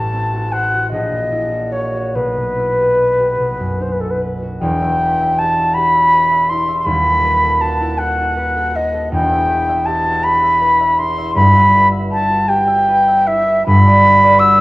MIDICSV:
0, 0, Header, 1, 3, 480
1, 0, Start_track
1, 0, Key_signature, 1, "minor"
1, 0, Tempo, 789474
1, 804, Tempo, 823045
1, 1288, Time_signature, 6, 3, 24, 8
1, 2724, Tempo, 750000
1, 7524, Tempo, 777202
1, 8484, Tempo, 722022
1, 9108, End_track
2, 0, Start_track
2, 0, Title_t, "Flute"
2, 0, Program_c, 0, 73
2, 0, Note_on_c, 0, 81, 88
2, 313, Note_on_c, 0, 78, 87
2, 323, Note_off_c, 0, 81, 0
2, 551, Note_off_c, 0, 78, 0
2, 555, Note_on_c, 0, 75, 91
2, 1035, Note_on_c, 0, 73, 70
2, 1044, Note_off_c, 0, 75, 0
2, 1287, Note_on_c, 0, 71, 72
2, 1295, Note_off_c, 0, 73, 0
2, 2257, Note_on_c, 0, 72, 56
2, 2266, Note_off_c, 0, 71, 0
2, 2316, Note_on_c, 0, 71, 56
2, 2325, Note_off_c, 0, 72, 0
2, 2367, Note_on_c, 0, 69, 55
2, 2376, Note_off_c, 0, 71, 0
2, 2425, Note_on_c, 0, 71, 59
2, 2434, Note_off_c, 0, 69, 0
2, 2486, Note_off_c, 0, 71, 0
2, 2716, Note_on_c, 0, 79, 96
2, 3215, Note_on_c, 0, 81, 93
2, 3225, Note_off_c, 0, 79, 0
2, 3443, Note_on_c, 0, 83, 106
2, 3453, Note_off_c, 0, 81, 0
2, 3923, Note_on_c, 0, 84, 91
2, 3933, Note_off_c, 0, 83, 0
2, 4111, Note_off_c, 0, 84, 0
2, 4115, Note_on_c, 0, 84, 74
2, 4153, Note_on_c, 0, 83, 103
2, 4162, Note_off_c, 0, 84, 0
2, 4639, Note_on_c, 0, 81, 92
2, 4649, Note_off_c, 0, 83, 0
2, 4877, Note_on_c, 0, 78, 95
2, 4887, Note_off_c, 0, 81, 0
2, 5373, Note_on_c, 0, 75, 84
2, 5383, Note_off_c, 0, 78, 0
2, 5608, Note_off_c, 0, 75, 0
2, 5612, Note_on_c, 0, 79, 98
2, 6077, Note_on_c, 0, 81, 94
2, 6086, Note_off_c, 0, 79, 0
2, 6321, Note_on_c, 0, 83, 107
2, 6331, Note_off_c, 0, 81, 0
2, 6802, Note_on_c, 0, 84, 105
2, 6812, Note_off_c, 0, 83, 0
2, 7031, Note_off_c, 0, 84, 0
2, 7035, Note_on_c, 0, 83, 105
2, 7372, Note_off_c, 0, 83, 0
2, 7525, Note_on_c, 0, 81, 107
2, 7749, Note_on_c, 0, 79, 103
2, 7758, Note_off_c, 0, 81, 0
2, 8237, Note_on_c, 0, 76, 97
2, 8246, Note_off_c, 0, 79, 0
2, 8476, Note_off_c, 0, 76, 0
2, 8480, Note_on_c, 0, 83, 115
2, 8963, Note_on_c, 0, 88, 107
2, 8973, Note_off_c, 0, 83, 0
2, 9108, Note_off_c, 0, 88, 0
2, 9108, End_track
3, 0, Start_track
3, 0, Title_t, "Harp"
3, 0, Program_c, 1, 46
3, 0, Note_on_c, 1, 33, 63
3, 0, Note_on_c, 1, 45, 45
3, 81, Note_on_c, 1, 60, 48
3, 200, Note_on_c, 1, 66, 45
3, 320, Note_on_c, 1, 72, 41
3, 432, Note_off_c, 1, 66, 0
3, 440, Note_on_c, 1, 66, 46
3, 555, Note_on_c, 1, 34, 58
3, 579, Note_off_c, 1, 33, 0
3, 579, Note_off_c, 1, 45, 0
3, 580, Note_off_c, 1, 60, 0
3, 581, Note_off_c, 1, 72, 0
3, 679, Note_on_c, 1, 46, 38
3, 802, Note_on_c, 1, 64, 44
3, 914, Note_off_c, 1, 66, 0
3, 921, Note_on_c, 1, 66, 40
3, 1040, Note_on_c, 1, 73, 43
3, 1157, Note_off_c, 1, 66, 0
3, 1164, Note_on_c, 1, 66, 42
3, 1288, Note_on_c, 1, 35, 55
3, 1304, Note_off_c, 1, 34, 0
3, 1305, Note_off_c, 1, 46, 0
3, 1306, Note_off_c, 1, 73, 0
3, 1307, Note_off_c, 1, 66, 0
3, 1415, Note_on_c, 1, 47, 41
3, 1532, Note_off_c, 1, 64, 0
3, 1539, Note_on_c, 1, 64, 41
3, 1657, Note_on_c, 1, 67, 41
3, 1776, Note_on_c, 1, 71, 39
3, 1888, Note_off_c, 1, 67, 0
3, 1895, Note_on_c, 1, 67, 38
3, 2005, Note_off_c, 1, 35, 0
3, 2012, Note_on_c, 1, 35, 49
3, 2032, Note_off_c, 1, 67, 0
3, 2033, Note_off_c, 1, 47, 0
3, 2034, Note_off_c, 1, 64, 0
3, 2130, Note_on_c, 1, 42, 38
3, 2249, Note_on_c, 1, 63, 40
3, 2374, Note_on_c, 1, 66, 38
3, 2485, Note_off_c, 1, 71, 0
3, 2492, Note_on_c, 1, 71, 35
3, 2606, Note_off_c, 1, 66, 0
3, 2613, Note_on_c, 1, 66, 37
3, 2722, Note_on_c, 1, 28, 70
3, 2726, Note_on_c, 1, 40, 70
3, 2743, Note_off_c, 1, 35, 0
3, 2743, Note_off_c, 1, 42, 0
3, 2743, Note_off_c, 1, 63, 0
3, 2746, Note_off_c, 1, 66, 0
3, 2855, Note_on_c, 1, 76, 55
3, 2967, Note_off_c, 1, 71, 0
3, 2975, Note_on_c, 1, 71, 50
3, 3093, Note_off_c, 1, 76, 0
3, 3100, Note_on_c, 1, 76, 55
3, 3226, Note_on_c, 1, 67, 47
3, 3341, Note_on_c, 1, 66, 45
3, 3454, Note_off_c, 1, 67, 0
3, 3462, Note_on_c, 1, 67, 54
3, 3540, Note_off_c, 1, 66, 0
3, 3570, Note_off_c, 1, 76, 0
3, 3578, Note_on_c, 1, 76, 56
3, 3691, Note_off_c, 1, 71, 0
3, 3699, Note_on_c, 1, 71, 52
3, 3803, Note_off_c, 1, 76, 0
3, 3810, Note_on_c, 1, 76, 51
3, 3932, Note_on_c, 1, 64, 47
3, 4040, Note_off_c, 1, 76, 0
3, 4048, Note_on_c, 1, 76, 58
3, 4157, Note_on_c, 1, 27, 65
3, 4165, Note_on_c, 1, 39, 74
3, 4184, Note_off_c, 1, 28, 0
3, 4185, Note_off_c, 1, 76, 0
3, 4187, Note_off_c, 1, 40, 0
3, 4187, Note_off_c, 1, 64, 0
3, 4190, Note_off_c, 1, 67, 0
3, 4290, Note_on_c, 1, 69, 52
3, 4400, Note_off_c, 1, 71, 0
3, 4408, Note_on_c, 1, 71, 57
3, 4521, Note_off_c, 1, 69, 0
3, 4529, Note_on_c, 1, 69, 55
3, 4644, Note_on_c, 1, 66, 56
3, 4768, Note_on_c, 1, 64, 49
3, 4875, Note_off_c, 1, 69, 0
3, 4883, Note_on_c, 1, 69, 53
3, 4970, Note_off_c, 1, 64, 0
3, 4996, Note_off_c, 1, 66, 0
3, 5004, Note_on_c, 1, 66, 50
3, 5119, Note_off_c, 1, 71, 0
3, 5127, Note_on_c, 1, 71, 55
3, 5244, Note_off_c, 1, 69, 0
3, 5251, Note_on_c, 1, 69, 52
3, 5359, Note_off_c, 1, 66, 0
3, 5367, Note_on_c, 1, 66, 51
3, 5485, Note_off_c, 1, 69, 0
3, 5493, Note_on_c, 1, 69, 53
3, 5605, Note_on_c, 1, 28, 70
3, 5612, Note_on_c, 1, 40, 74
3, 5629, Note_off_c, 1, 27, 0
3, 5632, Note_off_c, 1, 66, 0
3, 5633, Note_off_c, 1, 39, 0
3, 5634, Note_off_c, 1, 69, 0
3, 5732, Note_on_c, 1, 76, 55
3, 5845, Note_off_c, 1, 71, 0
3, 5853, Note_on_c, 1, 71, 57
3, 5965, Note_off_c, 1, 76, 0
3, 5972, Note_on_c, 1, 76, 60
3, 6085, Note_on_c, 1, 67, 58
3, 6202, Note_on_c, 1, 66, 47
3, 6318, Note_off_c, 1, 67, 0
3, 6326, Note_on_c, 1, 67, 58
3, 6410, Note_off_c, 1, 66, 0
3, 6439, Note_off_c, 1, 76, 0
3, 6447, Note_on_c, 1, 76, 58
3, 6559, Note_off_c, 1, 71, 0
3, 6566, Note_on_c, 1, 71, 58
3, 6681, Note_off_c, 1, 76, 0
3, 6688, Note_on_c, 1, 76, 64
3, 6813, Note_on_c, 1, 64, 52
3, 6919, Note_off_c, 1, 76, 0
3, 6927, Note_on_c, 1, 76, 60
3, 7034, Note_on_c, 1, 31, 72
3, 7042, Note_on_c, 1, 43, 77
3, 7060, Note_off_c, 1, 28, 0
3, 7064, Note_off_c, 1, 40, 0
3, 7155, Note_off_c, 1, 76, 0
3, 7162, Note_on_c, 1, 76, 62
3, 7273, Note_off_c, 1, 71, 0
3, 7281, Note_on_c, 1, 71, 66
3, 7391, Note_off_c, 1, 76, 0
3, 7398, Note_on_c, 1, 76, 64
3, 7510, Note_off_c, 1, 67, 0
3, 7518, Note_on_c, 1, 67, 60
3, 7637, Note_on_c, 1, 66, 49
3, 7745, Note_off_c, 1, 67, 0
3, 7752, Note_on_c, 1, 67, 66
3, 7837, Note_off_c, 1, 66, 0
3, 7862, Note_off_c, 1, 76, 0
3, 7870, Note_on_c, 1, 76, 67
3, 7993, Note_off_c, 1, 71, 0
3, 8001, Note_on_c, 1, 71, 64
3, 8113, Note_off_c, 1, 76, 0
3, 8121, Note_on_c, 1, 76, 64
3, 8237, Note_off_c, 1, 64, 0
3, 8244, Note_on_c, 1, 64, 55
3, 8353, Note_off_c, 1, 76, 0
3, 8361, Note_on_c, 1, 76, 60
3, 8474, Note_off_c, 1, 31, 0
3, 8478, Note_off_c, 1, 43, 0
3, 8481, Note_on_c, 1, 31, 77
3, 8486, Note_on_c, 1, 43, 82
3, 8502, Note_off_c, 1, 76, 0
3, 8506, Note_off_c, 1, 64, 0
3, 8613, Note_on_c, 1, 74, 64
3, 8725, Note_off_c, 1, 71, 0
3, 8733, Note_on_c, 1, 71, 59
3, 8852, Note_off_c, 1, 74, 0
3, 8860, Note_on_c, 1, 74, 66
3, 8973, Note_on_c, 1, 66, 60
3, 9108, Note_off_c, 1, 31, 0
3, 9108, Note_off_c, 1, 43, 0
3, 9108, Note_off_c, 1, 66, 0
3, 9108, Note_off_c, 1, 67, 0
3, 9108, Note_off_c, 1, 71, 0
3, 9108, Note_off_c, 1, 74, 0
3, 9108, End_track
0, 0, End_of_file